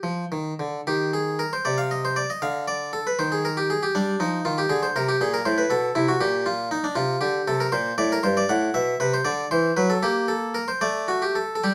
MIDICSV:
0, 0, Header, 1, 2, 480
1, 0, Start_track
1, 0, Tempo, 552995
1, 750, Time_signature, 6, 3, 24, 8
1, 750, Tempo, 518135
1, 2670, Tempo, 505476
1, 8910, Tempo, 532860
1, 10923, End_track
2, 0, Start_track
2, 0, Title_t, "Harpsichord"
2, 0, Program_c, 0, 6
2, 29, Note_on_c, 0, 53, 39
2, 203, Note_off_c, 0, 53, 0
2, 277, Note_on_c, 0, 51, 39
2, 449, Note_off_c, 0, 51, 0
2, 516, Note_on_c, 0, 50, 36
2, 686, Note_off_c, 0, 50, 0
2, 758, Note_on_c, 0, 67, 58
2, 759, Note_on_c, 0, 51, 42
2, 963, Note_off_c, 0, 67, 0
2, 1001, Note_on_c, 0, 68, 56
2, 1239, Note_on_c, 0, 70, 59
2, 1240, Note_off_c, 0, 68, 0
2, 1279, Note_off_c, 0, 51, 0
2, 1358, Note_off_c, 0, 70, 0
2, 1367, Note_on_c, 0, 72, 56
2, 1478, Note_on_c, 0, 74, 70
2, 1482, Note_off_c, 0, 72, 0
2, 1482, Note_on_c, 0, 48, 45
2, 1597, Note_off_c, 0, 74, 0
2, 1597, Note_on_c, 0, 77, 49
2, 1716, Note_off_c, 0, 77, 0
2, 1721, Note_on_c, 0, 75, 65
2, 1838, Note_off_c, 0, 75, 0
2, 1847, Note_on_c, 0, 72, 66
2, 1953, Note_on_c, 0, 74, 60
2, 1961, Note_off_c, 0, 72, 0
2, 1996, Note_off_c, 0, 48, 0
2, 2073, Note_off_c, 0, 74, 0
2, 2082, Note_on_c, 0, 75, 57
2, 2192, Note_on_c, 0, 77, 68
2, 2194, Note_on_c, 0, 50, 41
2, 2197, Note_off_c, 0, 75, 0
2, 2395, Note_off_c, 0, 77, 0
2, 2429, Note_on_c, 0, 74, 59
2, 2633, Note_off_c, 0, 74, 0
2, 2664, Note_on_c, 0, 69, 62
2, 2709, Note_off_c, 0, 50, 0
2, 2790, Note_off_c, 0, 69, 0
2, 2795, Note_on_c, 0, 71, 47
2, 2909, Note_on_c, 0, 72, 74
2, 2913, Note_on_c, 0, 51, 45
2, 2916, Note_off_c, 0, 71, 0
2, 3034, Note_off_c, 0, 72, 0
2, 3034, Note_on_c, 0, 68, 49
2, 3156, Note_off_c, 0, 68, 0
2, 3157, Note_on_c, 0, 70, 66
2, 3273, Note_on_c, 0, 67, 53
2, 3277, Note_off_c, 0, 70, 0
2, 3395, Note_off_c, 0, 67, 0
2, 3396, Note_on_c, 0, 68, 64
2, 3434, Note_off_c, 0, 51, 0
2, 3516, Note_on_c, 0, 67, 61
2, 3517, Note_off_c, 0, 68, 0
2, 3633, Note_on_c, 0, 62, 60
2, 3634, Note_on_c, 0, 55, 45
2, 3637, Note_off_c, 0, 67, 0
2, 3809, Note_off_c, 0, 55, 0
2, 3870, Note_on_c, 0, 63, 62
2, 3872, Note_on_c, 0, 53, 45
2, 3876, Note_off_c, 0, 62, 0
2, 4048, Note_off_c, 0, 53, 0
2, 4108, Note_on_c, 0, 65, 59
2, 4110, Note_on_c, 0, 51, 46
2, 4114, Note_off_c, 0, 63, 0
2, 4231, Note_on_c, 0, 67, 63
2, 4233, Note_off_c, 0, 65, 0
2, 4284, Note_off_c, 0, 51, 0
2, 4340, Note_on_c, 0, 68, 74
2, 4341, Note_on_c, 0, 50, 51
2, 4353, Note_off_c, 0, 67, 0
2, 4465, Note_on_c, 0, 72, 56
2, 4467, Note_off_c, 0, 68, 0
2, 4517, Note_off_c, 0, 50, 0
2, 4588, Note_off_c, 0, 72, 0
2, 4591, Note_on_c, 0, 48, 52
2, 4591, Note_on_c, 0, 70, 71
2, 4710, Note_off_c, 0, 70, 0
2, 4710, Note_on_c, 0, 67, 66
2, 4761, Note_off_c, 0, 48, 0
2, 4828, Note_off_c, 0, 67, 0
2, 4829, Note_on_c, 0, 46, 48
2, 4831, Note_on_c, 0, 68, 65
2, 4948, Note_off_c, 0, 68, 0
2, 4949, Note_on_c, 0, 70, 66
2, 4999, Note_off_c, 0, 46, 0
2, 5061, Note_on_c, 0, 72, 79
2, 5062, Note_on_c, 0, 45, 51
2, 5066, Note_off_c, 0, 70, 0
2, 5179, Note_on_c, 0, 71, 58
2, 5181, Note_off_c, 0, 72, 0
2, 5233, Note_off_c, 0, 45, 0
2, 5294, Note_on_c, 0, 47, 49
2, 5298, Note_on_c, 0, 69, 74
2, 5299, Note_off_c, 0, 71, 0
2, 5468, Note_off_c, 0, 47, 0
2, 5535, Note_on_c, 0, 64, 70
2, 5536, Note_on_c, 0, 48, 52
2, 5538, Note_off_c, 0, 69, 0
2, 5657, Note_off_c, 0, 64, 0
2, 5658, Note_on_c, 0, 66, 53
2, 5709, Note_off_c, 0, 48, 0
2, 5776, Note_on_c, 0, 46, 53
2, 5776, Note_on_c, 0, 67, 76
2, 5778, Note_off_c, 0, 66, 0
2, 6016, Note_off_c, 0, 67, 0
2, 6016, Note_on_c, 0, 65, 73
2, 6219, Note_off_c, 0, 65, 0
2, 6256, Note_on_c, 0, 63, 67
2, 6292, Note_off_c, 0, 46, 0
2, 6375, Note_off_c, 0, 63, 0
2, 6377, Note_on_c, 0, 62, 65
2, 6486, Note_on_c, 0, 48, 55
2, 6486, Note_on_c, 0, 65, 79
2, 6496, Note_off_c, 0, 62, 0
2, 6662, Note_off_c, 0, 48, 0
2, 6693, Note_off_c, 0, 65, 0
2, 6726, Note_on_c, 0, 67, 61
2, 6731, Note_on_c, 0, 50, 51
2, 6907, Note_off_c, 0, 50, 0
2, 6972, Note_off_c, 0, 67, 0
2, 6981, Note_on_c, 0, 48, 56
2, 6981, Note_on_c, 0, 69, 75
2, 7100, Note_off_c, 0, 69, 0
2, 7102, Note_on_c, 0, 70, 76
2, 7155, Note_off_c, 0, 48, 0
2, 7214, Note_on_c, 0, 72, 90
2, 7218, Note_on_c, 0, 46, 63
2, 7222, Note_off_c, 0, 70, 0
2, 7393, Note_off_c, 0, 46, 0
2, 7423, Note_off_c, 0, 72, 0
2, 7459, Note_on_c, 0, 74, 89
2, 7460, Note_on_c, 0, 45, 62
2, 7581, Note_off_c, 0, 74, 0
2, 7596, Note_on_c, 0, 70, 82
2, 7634, Note_off_c, 0, 45, 0
2, 7699, Note_on_c, 0, 72, 78
2, 7704, Note_on_c, 0, 43, 50
2, 7710, Note_off_c, 0, 70, 0
2, 7822, Note_off_c, 0, 72, 0
2, 7831, Note_on_c, 0, 74, 78
2, 7877, Note_off_c, 0, 43, 0
2, 7946, Note_on_c, 0, 78, 85
2, 7948, Note_off_c, 0, 74, 0
2, 7950, Note_on_c, 0, 45, 56
2, 8123, Note_off_c, 0, 45, 0
2, 8183, Note_on_c, 0, 76, 81
2, 8184, Note_on_c, 0, 47, 52
2, 8188, Note_off_c, 0, 78, 0
2, 8360, Note_off_c, 0, 47, 0
2, 8391, Note_off_c, 0, 76, 0
2, 8428, Note_on_c, 0, 48, 54
2, 8430, Note_on_c, 0, 71, 83
2, 8551, Note_off_c, 0, 71, 0
2, 8557, Note_on_c, 0, 72, 65
2, 8602, Note_off_c, 0, 48, 0
2, 8662, Note_on_c, 0, 74, 81
2, 8665, Note_on_c, 0, 50, 56
2, 8674, Note_off_c, 0, 72, 0
2, 8840, Note_off_c, 0, 50, 0
2, 8870, Note_off_c, 0, 74, 0
2, 8914, Note_on_c, 0, 72, 83
2, 8915, Note_on_c, 0, 52, 55
2, 9081, Note_off_c, 0, 52, 0
2, 9110, Note_off_c, 0, 72, 0
2, 9143, Note_on_c, 0, 71, 70
2, 9145, Note_on_c, 0, 54, 48
2, 9260, Note_off_c, 0, 71, 0
2, 9262, Note_on_c, 0, 69, 71
2, 9314, Note_off_c, 0, 54, 0
2, 9377, Note_on_c, 0, 67, 77
2, 9378, Note_on_c, 0, 58, 57
2, 9379, Note_off_c, 0, 69, 0
2, 9608, Note_on_c, 0, 69, 69
2, 9614, Note_off_c, 0, 67, 0
2, 9845, Note_on_c, 0, 70, 70
2, 9848, Note_off_c, 0, 69, 0
2, 9891, Note_off_c, 0, 58, 0
2, 9966, Note_on_c, 0, 72, 63
2, 9967, Note_off_c, 0, 70, 0
2, 10087, Note_on_c, 0, 57, 47
2, 10087, Note_on_c, 0, 74, 72
2, 10088, Note_off_c, 0, 72, 0
2, 10327, Note_on_c, 0, 66, 65
2, 10330, Note_off_c, 0, 74, 0
2, 10452, Note_off_c, 0, 66, 0
2, 10453, Note_on_c, 0, 67, 50
2, 10573, Note_on_c, 0, 69, 55
2, 10577, Note_off_c, 0, 67, 0
2, 10618, Note_off_c, 0, 57, 0
2, 10743, Note_off_c, 0, 69, 0
2, 10754, Note_on_c, 0, 69, 41
2, 10824, Note_off_c, 0, 69, 0
2, 10827, Note_on_c, 0, 67, 55
2, 10828, Note_on_c, 0, 55, 41
2, 10923, Note_off_c, 0, 55, 0
2, 10923, Note_off_c, 0, 67, 0
2, 10923, End_track
0, 0, End_of_file